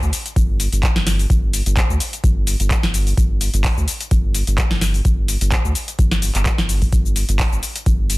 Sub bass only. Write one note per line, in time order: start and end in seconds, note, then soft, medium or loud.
0.02 0.10 D2 medium
0.36 0.68 G1 loud
0.72 0.90 G1 medium
0.96 1.26 G1 loud
1.30 1.61 G1 medium
1.66 1.84 G1 loud
1.90 1.98 D2 medium
2.24 2.55 G1 loud
2.60 2.77 G1 medium
2.83 3.13 G1 loud
3.17 3.49 G1 medium
3.54 3.71 G1 loud
3.77 3.85 D2 medium
4.11 4.43 G1 loud
4.47 4.65 G1 medium
4.71 5.01 G1 loud
5.05 5.36 G1 medium
5.41 5.58 G1 loud
5.65 5.73 D2 medium
5.99 6.30 G1 loud
6.35 6.52 G1 medium
6.58 6.88 G1 loud
6.93 7.24 G1 medium
7.29 7.46 G1 loud
7.52 7.60 G1 medium
7.86 8.18 G1 loud